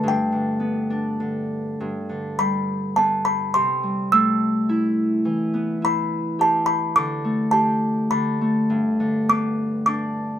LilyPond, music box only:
\new Staff \with { instrumentName = "Music box" } { \time 3/4 \key g \major \tempo 4 = 104 g''2 r4 | r4 b''4 a''8 b''8 | c'''4 e'''4. r8 | r4 b''4 a''8 b''8 |
d'''4 a''4 b''8. r16 | r4 d'''4 d'''4 | }